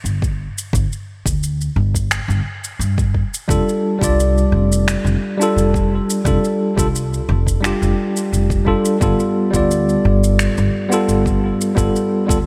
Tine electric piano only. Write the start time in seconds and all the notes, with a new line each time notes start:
3.48 G3 D4 F4 A4
3.98 G3 D4 F4
4.04 D5
5.38 G3 D4 F4
5.43 A4
6.25 G3 D4 F4 A4
6.77 G3 D4 F4 A4
7.61 G3 D4
7.65 F4 G4
8.65 G3 D4 F4 A4
9.00 G3 B3 F4 A4
9.51 G3 B3
9.55 F4 D5
10.89 G3 B3 F4
10.94 A4
11.75 G3 B3 F4 A4
12.27 G3 B3 F4 A4